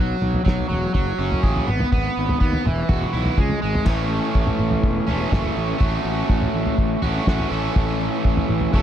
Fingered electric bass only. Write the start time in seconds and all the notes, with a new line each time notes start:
Already playing: B1
0.21 B1
0.46 B1
0.70 E1
0.95 F#1
1.19 F#1
1.43 A1
1.68 G#1
1.92 G#1
2.17 G#1
2.41 D#2
2.66 E1
2.89 E1
3.14 B1
3.38 C#2
3.63 G#1
3.86 A1
4.35 A1
4.59 A1
4.83 E1
5.09 E1
5.32 F#1
5.57 A1
5.81 A1
6.05 A1
6.29 A1
6.54 A1
6.78 A1
7.02 A1
7.28 A1
7.51 A1
7.76 A1
8.25 A1
8.50 A1
8.74 E1